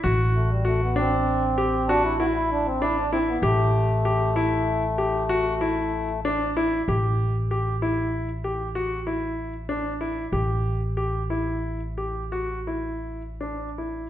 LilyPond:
<<
  \new Staff \with { instrumentName = "Grand piano" } { \time 11/8 \key a \dorian \tempo 4 = 96 fis'4 fis'8 d'4 g'8 fis'8 e'4 d'8 e'8 | g'4 g'8 e'4 g'8 fis'8 e'4 d'8 e'8 | g'4 g'8 e'4 g'8 fis'8 e'4 d'8 e'8 | g'4 g'8 e'4 g'8 fis'8 e'4 d'8 e'8 | }
  \new Staff \with { instrumentName = "Accordion" } { \time 11/8 \key a \dorian r8 a16 g16 a16 b16 c'4. d'16 e'16 fis'16 e'16 d'16 c'16 e'16 d'16 c'16 b16 | a1~ a8 r4 | r1 r4. | r1 r4. | }
  \new Staff \with { instrumentName = "Upright bass" } { \clef bass \time 11/8 \key a \dorian a,,1~ a,,4. | a,,1~ a,,4. | a,,1~ a,,4. | a,,1~ a,,4. | }
>>